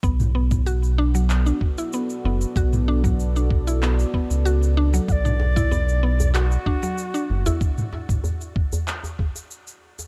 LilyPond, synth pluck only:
\new Staff \with { instrumentName = "Synth pluck" } { \time 4/4 \key b \minor \tempo 4 = 95 b16 r16 b8 fis'16 r16 d'16 fis8 d'16 r16 e'16 b16 r16 b8 | fis'16 r16 d'16 fis8 d'16 r16 e'16 b16 r16 b8 fis'16 r16 d'16 fis16~ | fis16 d'16 r16 e'16 b16 r16 b8 fis'16 r16 d'16 fis8 d'16 r16 e'16 | r1 | }